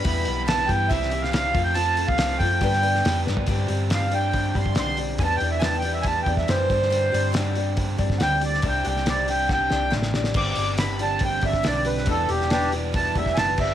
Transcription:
<<
  \new Staff \with { instrumentName = "Accordion" } { \time 4/4 \key g \mixolydian \tempo 4 = 140 b''4 a''8 g''8 e''8. f''16 f''8. g''16 | a''8. f''8. g''2 r8 | r4 f''8 g''4 <b'' c'''>8 c'''8 r8 | \tuplet 3/2 { <aes'' a''>8 g''8 e''8 <aes'' a''>8 g''8 e''8 <aes'' a''>8 g''8 e''8 } c''4~ |
c''4 r2 <fis'' g''>8 d''8 | g''8 <fis'' g''>8 d''8 g''8 <fis'' g''>4 r4 | d'''4 b''8 a''8 g''8 e''8 d''8 b'8 | a'8 g'8 <d' g'>8 r8 a''8 e''8 <aes'' a''>8 e''8 | }
  \new Staff \with { instrumentName = "Steel-string acoustic guitar" } { \time 4/4 \key g \mixolydian <e g b e' g'>8 <b e' g'>8 <g b e' g'>8 <b e' g'>8 <c g c' e' g'>8 <c' e' g'>8 <g c' e' g'>8 <c' f' a'>8 | <f c' f' a'>8 <c' f' a'>8 <f c' f' a'>8 <c' f' a'>8 <g, d g b d' b'>8 <g b d' b'>8 <g b d' b'>8 <g b d' b'>8 | <g, d g c' d' g'>8 <g c' d' g'>8 <g, d g c' d' g'>8 <g c' d' g'>8 <g c' d' g'>8 <g c' d' g'>8 <g, d g c' d' g'>8 <g c' d' g'>8 | <e g b d' g'>8 <b d' g'>8 <e g b d' g'>8 <b d' g'>8 <g b d' g'>8 <b d' g'>8 <e g b d' g'>8 <g c' d' g'>8 |
<g, d g c' d' g'>8 <g c' d' g'>8 <g, d g c' d' g'>8 <g c' d' g'>8 <g c' d' g'>8 <g c' d' g'>8 <g, d g c' d' g'>8 <g c' d' g'>8 | <c g c' d' g'>8 <c' d' g'>8 <c g c' d' g'>8 <c' d' g'>8 <g c' d' g'>8 <c' d' g'>8 <c g c' d' g'>8 <c' d' g'>8 | <g, d g c' d' g'>8 <g c' d' g'>8 <g, d g c' d' g'>8 <g c' d' g'>8 <g c' d' g'>8 <g c' d' g'>8 <g, d g c' d' g'>8 <g c' d' g'>8 | <e g b d' g'>8 <b d' g'>8 <e g b d' g'>8 <b d' g'>8 <g b d' g'>8 <b d' g'>8 <e g b d' g'>8 <g c' d' g'>8 | }
  \new Staff \with { instrumentName = "Overdriven electric guitar" } { \time 4/4 \key g \mixolydian <e, b, e g b e'>8 <e g b e'>8 <e g b e'>4 <c e g c' e'>8 <g c' e'>8 <e g c' e'>8 <f, c f a c' f'>8 | <f, c f a c' f'>8 <f a c' f'>8 <f a c' f'>4 <g, d g b d' g'>8 <g b d' g'>8 <g b d' g'>8 <g b d' g'>8 | <g, d g c' d' g'>4. <g, d g c' d' g'>2~ <g, d g c' d' g'>8 | <e, b, e g e' g'>4. <e, b, e g e' g'>2 <g, d g c' d' g'>8~ |
<g, d g c' d' g'>4 <g, d g c' d' g'>2~ <g, d g c' d' g'>8 r8 | <c g c' d' g'>4. <c g c' d' g'>2~ <c g c' d' g'>8 | <g, d g c' d' g'>4. <g, d g c' d' g'>2~ <g, d g c' d' g'>8 | <e, b, e g e' g'>4. <e, b, e g e' g'>2 <g, d g c' d' g'>8 | }
  \new Staff \with { instrumentName = "Fingered electric bass" } { \clef bass \time 4/4 \key g \mixolydian e,8 b,,4 g,8 c,4. f,8~ | f,8. c,8. fis,8 g,4 f,8 g,8 | g,8 g,2 g,8 b,,4 | e,8 e,2 e,8 fis,8 g,8~ |
g,8 g,2 g,8 d,4 | c,8 c,2 c,8 a,,4 | g,,8 g,,2 g,,8 b,,4 | e,,8 e,,2 e,,8 fis,,8 g,,8 | }
  \new DrumStaff \with { instrumentName = "Drums" } \drummode { \time 4/4 <hho bd>8 hho8 <hho sn>16 sn16 <hho bd>8 <hho bd>16 sn16 hho16 sn16 <hho sn>8 <hho bd>8 | hho8 hho16 bd16 <hho sn>16 sn16 <hho bd>8 <hho bd>16 sn16 hho16 sn16 <hho sn>8 sn16 tomfh16 | <hho bd>8 hho8 <hho sn>8 hho8 <hho bd>8 <hho bd>16 bd16 <hho sn>8 hho8 | <hho bd>8 hho8 <hho sn>8 hho8 <hho bd>8 <hho bd>16 <bd sn>16 <hho sn>8 <hho bd>16 sn16 |
hho8 hho8 <hho sn>8 hho8 <hho bd>8 <hho bd>16 <bd sn>16 <hho sn>8 hho16 sn16 | <hho bd>8 hho16 sn16 <hho sn>8 hho8 <bd sn>8 sn8 sn16 sn16 sn16 sn16 | <cymc bd>8 hho8 <hho sn>8 hho8 <hho bd>8 <hho bd>16 <bd sn>16 <hho sn>8 hho16 sn16 | <hho bd>8 hho16 sn16 <hho sn>8 hho8 <hho bd>8 <hho bd>16 <bd sn>16 <hho sn>8 <cymc bd>8 | }
>>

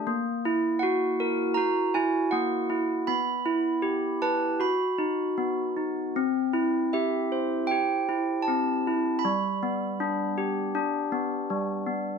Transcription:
\new Staff \with { instrumentName = "Handbells" } { \time 4/4 \key c \lydian \tempo 4 = 79 << { r4 fis''4 ais''8 gis''8 fis''4 | b''4. a''8 b''4. r8 | r4 e''4 g''4 a''4 | b''4. r2 r8 | } \\ { ais8 e'8 fis'8 ais'8 fis'8 e'8 ais8 e'8 | b8 e'8 g'8 b'8 fis'8 dis'8 b8 dis'8 | c'8 e'8 g'8 c''8 g'8 e'8 c'8 e'8 | g8 b8 d'8 g'8 d'8 b8 g8 b8 | } >> }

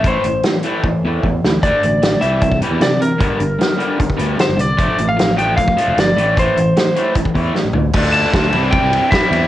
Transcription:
<<
  \new Staff \with { instrumentName = "Lead electric guitar" } { \time 4/4 \key d \minor \tempo 4 = 152 c''4 r2. | d''4. e''4 r8 d''8 bes'8~ | bes'2. c''8 d''8~ | d''8. f''8. g''8 f''4 d''4 |
c''2 r2 | r8 a''4. g''4 e''4 | }
  \new Staff \with { instrumentName = "Overdriven electric guitar" } { \clef bass \time 4/4 \key d \minor <a, e a>8 <a, e>8 <a, e>8 <a, e a>8 <a, e>8 <a, e a>8 <a, e>8 <a, e>8 | <d a d'>8 <d a>8 <d a>8 <c e g>8 <c e>8 <c e g>8 <c e>8 <c e>8 | <g, d g>8 <g, d>8 <g, d>8 <g, d g>8 <g, d>8 <g, d g>8 <g, d>8 <g, d>8 | <f a d'>8 <f a>8 <f a>8 <f a d'>8 <f a>8 <f a d'>8 <f a>8 <a, e a>8 |
<a, e a>8 <a, e>8 <a, e>8 <a, e a>8 <a, e>8 <a, e a>8 <a, e>8 <a, e>8 | <d a d' f'>4 <d a d' f'>8 <c e g c' e'>4. <c e g c' e'>8 <g c' e'>8 | }
  \new Staff \with { instrumentName = "Fingered electric bass" } { \clef bass \time 4/4 \key d \minor a,,8 a,,8 r4. e,8 e,8 d,8 | d,16 r16 a,,4 c,4~ c,16 e,16 c4 | g,,16 r16 g,,8 r4. d,8 r16 g,,16 c,8 | f,,16 r16 a,,2 r16 f,,16 g,,8 a,,8~ |
a,,8 a,,8 r4. e,8 r16 a,,16 d,8 | d,4 d,8 c,8. c,8 r8. e,8 | }
  \new DrumStaff \with { instrumentName = "Drums" } \drummode { \time 4/4 <hh bd>8 hh8 <hh sn>8 hh8 bd4 bd8 sn8 | <hh bd>8 hh8 <hh sn>8 hh8 <hh bd>16 bd16 hh8 <hh sn>8 hh8 | <hh bd>8 hh8 <hh sn>8 hh8 <hh bd>16 bd16 hh8 <hh sn>8 hh8 | <hh bd>8 hh8 <hh sn>8 hh8 <hh bd>16 bd16 hh8 <hh sn>8 hh8 |
<hh bd>8 hh8 <hh sn>8 hh8 <hh bd>16 bd16 <hh bd>8 sn8 tomfh8 | <cymc bd>8 cymr8 <bd cymr sn>8 cymr8 <bd cymr>8 cymr8 <bd cymr sn>8 cymr8 | }
>>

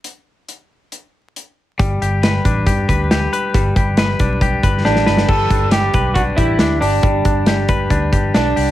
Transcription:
<<
  \new Staff \with { instrumentName = "Clean electric guitar" } { \time 4/4 \key g \major \tempo 4 = 137 r1 | g8 g'8 b'8 d'8 g'8 b'8 g'8 b'8 | g8 g'8 b'8 d'8 g'8 b'8 g'8 b'8 | g8 d'8 g'8 b'8 d'8 g'8 d'8 g'8 |
g8 d'8 g'8 b'8 d'8 g'8 d'8 g'8 | }
  \new Staff \with { instrumentName = "Clean electric guitar" } { \time 4/4 \key g \major r1 | r1 | r2. d'4 | a'4 g'4 fis'8 e'4 d'8~ |
d'2. d'4 | }
  \new Staff \with { instrumentName = "Fingered electric bass" } { \clef bass \time 4/4 \key g \major r1 | g,,8 g,,4 a,,8 g,8 d,4 r8 | g,,8 g,,4 b,,4 g,,8 a,,8 g,,8 | g,,8 g,,4 b,,4 a,,8 d,8 g,,8 |
g,,8 g,,4. d,8 g,,8 b,,8 c,8 | }
  \new DrumStaff \with { instrumentName = "Drums" } \drummode { \time 4/4 hh4 hh4 hh4 hh4 | <hh bd>8 hh8 <hh sn>8 <hh bd>8 <hh bd>8 <hh bd>8 <hh sn>8 hh8 | <hh bd>8 <hh bd>8 <hh sn>8 <hh bd>8 <hh bd>8 <hh bd>8 sn16 sn16 sn16 sn16 | <cymc bd>8 <hh bd>8 <hh sn>8 <hh bd>8 <hh bd>8 <hh bd>8 <hh sn>8 hho8 |
<hh bd>8 <hh bd>8 <hh sn>8 <hh bd>8 <hh bd>8 <hh bd>8 <hh sn>8 hho8 | }
>>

